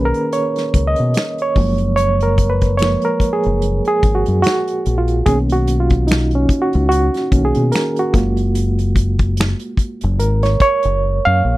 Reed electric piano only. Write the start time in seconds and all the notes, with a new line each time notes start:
Already playing: D#3 A#3 C#4 G#4 A#4 B4
0.05 A#4
0.33 C#5
0.87 D#5
1.42 C#5
1.56 F3 G#3 A#3
1.96 C#5
2.23 A#4
2.50 B4
2.77 F3 G#3 A#3 C#5
3.05 A#4
3.33 G#4
3.88 G#4
4.15 F#4
4.42 F#4
4.98 F4
5.26 D#3 A#3 C#4 G#4
5.53 F#4
5.80 F4
6.07 D#4
6.35 C#4
6.62 F#4
6.89 F#4
7.31 D#3 A#3 C#4
7.45 G#4
7.72 A#4
7.99 F#4
8.13 G#3 A#3 F4
10.19 A#4
10.43 C#5
10.62 C#5
11.25 F5